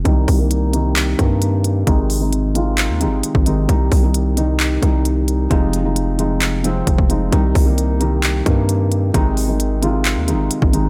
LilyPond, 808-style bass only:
\new Staff \with { instrumentName = "808-style bass" } { \clef bass \time 4/4 \key c \minor \tempo 4 = 132 c,8 c,2 g,4. | aes,,2~ aes,,16 ees,16. aes,,16. r16 aes,,8. | c,8 c,2 c,4. | f,,2. f,,16 f,,8. |
c,8 c,2 g,4. | aes,,2~ aes,,16 ees,16. aes,,16. r16 aes,,8. | }